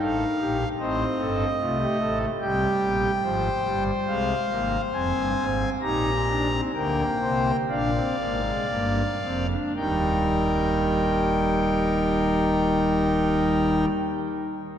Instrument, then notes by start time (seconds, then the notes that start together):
pipe organ
Already playing: D#4
0.00 A1 A2 A4 F5
0.39 A#1 A#2 G4
0.79 A1 A2 C4 C5 D#5
1.20 G1 G2 A4
1.60 C2 C3 A3 F4
1.80 G4
2.00 A1 A2 A4
2.41 C2 C3 G3 G4 G5
2.82 A#1 A#2
3.23 G#1 G#2 F3 C5
3.64 G1 G2 G3
4.07 C2 C3 G#3 F5
4.50 G#1 G#2 A#3
4.93 F1 F2 C4 G#5
5.15 G1 G2
5.37 G#1 G#2
5.81 A#1 A#2 D#4 G4 A#5
6.28 D4
6.51 C4
6.74 D2 D3 A#3 A#4 G5
7.21 C2 C3 C5
7.69 A#1 A#2 D4 D5 F5
7.94 C4
8.19 G#1 G#2 A#3
8.44 G#3
8.70 G1 G2 A#3
9.23 F1 F2 C4
9.49 D4
9.76 D#1 D#2 D#3 G3 D#4 A#4 G5